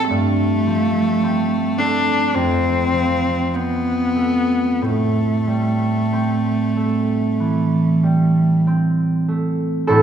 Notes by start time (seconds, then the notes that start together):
Already playing: F3 A3 C4 D4
0.09 G2 A3
0.67 F3
1.23 C4
1.79 A3 D4
2.35 F2 C4
2.93 F3
3.53 B3 C4
4.16 A3
4.82 A2 A3
5.47 G3
6.13 C4
6.77 A3
7.40 E3
8.03 G3
8.67 C4
9.28 A3
9.87 A1 A2 E4 A4